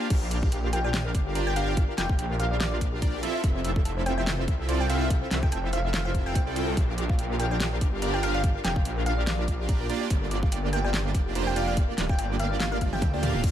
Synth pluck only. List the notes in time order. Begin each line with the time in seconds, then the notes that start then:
0.73 G5
0.84 G5
1.47 G5
1.56 F5
1.68 F5
1.98 G5
2.40 F5
2.60 D5
4.06 G5
4.18 G5
4.80 G5
4.90 F5
5.01 F5
5.43 G5
5.52 G5
5.73 F5
5.94 F5
6.05 F5
6.26 G5
6.35 G5
7.40 G5
7.51 G5
8.14 G5
8.23 F5
8.34 F5
8.64 G5
9.06 F5
9.27 D5
10.73 G5
10.84 G5
11.47 G5
11.56 F5
11.68 F5
12.09 G5
12.19 G5
12.40 F5
12.61 F5
12.72 F5
12.93 G5
13.02 G5